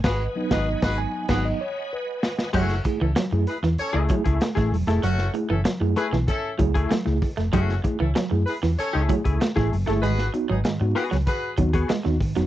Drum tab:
CC |x-------x-------|x---------------|----------------|----------------|
HH |----------------|--x-x-x-x-xxx-ox|x-x-x-x-x-xxx-ox|x-x-x-o-x-xxx-ox|
SD |o--o-o--o-----oo|-o--o--o----oo-o|-o--o--o----oo-o|-o--o--o----oo-o|
BD |o--o-o--o-------|o-o-------oo-o--|--------o-oo--o-|o-o-------oo-o--|

CC |----------------|
HH |x-x-x-o-x-xxx-ox|
SD |-o--o--o----oo-o|
BD |--------o-oo--o-|